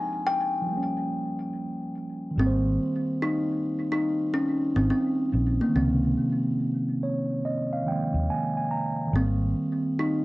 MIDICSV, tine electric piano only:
0, 0, Header, 1, 2, 480
1, 0, Start_track
1, 0, Key_signature, -4, "major"
1, 0, Tempo, 845070
1, 1347, Time_signature, 4, 2, 24, 8
1, 5820, End_track
2, 0, Start_track
2, 0, Title_t, "Tine electric piano"
2, 0, Program_c, 0, 4
2, 0, Control_c, 0, 64, 127
2, 0, Note_on_c, 0, 53, 67
2, 0, Note_on_c, 0, 56, 59
2, 0, Note_on_c, 0, 60, 58
2, 0, Note_on_c, 0, 63, 72
2, 343, Note_off_c, 0, 53, 0
2, 350, Note_on_c, 0, 53, 69
2, 365, Note_off_c, 0, 56, 0
2, 379, Note_on_c, 0, 55, 60
2, 380, Note_off_c, 0, 60, 0
2, 394, Control_c, 0, 64, 0
2, 409, Note_on_c, 0, 58, 61
2, 415, Note_off_c, 0, 63, 0
2, 439, Note_on_c, 0, 61, 76
2, 476, Control_c, 0, 64, 127
2, 1309, Note_off_c, 0, 53, 0
2, 1311, Note_on_c, 0, 51, 62
2, 1324, Note_off_c, 0, 55, 0
2, 1339, Note_off_c, 0, 58, 0
2, 1343, Note_on_c, 0, 55, 59
2, 1354, Note_off_c, 0, 61, 0
2, 1355, Control_c, 0, 64, 0
2, 1371, Note_on_c, 0, 58, 54
2, 1401, Note_on_c, 0, 72, 69
2, 1457, Control_c, 0, 64, 127
2, 3223, Note_off_c, 0, 51, 0
2, 3230, Note_on_c, 0, 51, 65
2, 3242, Note_off_c, 0, 55, 0
2, 3257, Note_off_c, 0, 58, 0
2, 3259, Note_on_c, 0, 53, 61
2, 3271, Note_off_c, 0, 72, 0
2, 3276, Control_c, 0, 64, 0
2, 3290, Note_on_c, 0, 56, 56
2, 3319, Note_on_c, 0, 48, 70
2, 3385, Control_c, 0, 64, 127
2, 3994, Note_on_c, 0, 73, 68
2, 4214, Note_off_c, 0, 73, 0
2, 4233, Note_on_c, 0, 75, 73
2, 4375, Note_off_c, 0, 75, 0
2, 4389, Note_on_c, 0, 77, 69
2, 4426, Note_off_c, 0, 51, 0
2, 4440, Note_off_c, 0, 53, 0
2, 4453, Note_on_c, 0, 51, 53
2, 4456, Note_off_c, 0, 56, 0
2, 4465, Note_off_c, 0, 77, 0
2, 4468, Note_on_c, 0, 53, 51
2, 4470, Note_off_c, 0, 48, 0
2, 4476, Note_on_c, 0, 79, 69
2, 4483, Note_on_c, 0, 56, 49
2, 4498, Note_on_c, 0, 58, 62
2, 4695, Note_off_c, 0, 79, 0
2, 4717, Note_on_c, 0, 80, 75
2, 4857, Note_off_c, 0, 80, 0
2, 4871, Note_on_c, 0, 80, 66
2, 4946, Note_off_c, 0, 80, 0
2, 4950, Note_on_c, 0, 82, 71
2, 5144, Note_off_c, 0, 51, 0
2, 5151, Note_on_c, 0, 51, 62
2, 5172, Note_off_c, 0, 82, 0
2, 5180, Note_on_c, 0, 55, 62
2, 5188, Note_off_c, 0, 53, 0
2, 5195, Note_off_c, 0, 56, 0
2, 5195, Control_c, 0, 64, 0
2, 5203, Note_off_c, 0, 58, 0
2, 5209, Note_on_c, 0, 58, 61
2, 5241, Note_on_c, 0, 60, 72
2, 5294, Control_c, 0, 64, 127
2, 5820, Note_off_c, 0, 51, 0
2, 5820, Note_off_c, 0, 55, 0
2, 5820, Note_off_c, 0, 58, 0
2, 5820, Note_off_c, 0, 60, 0
2, 5820, End_track
0, 0, End_of_file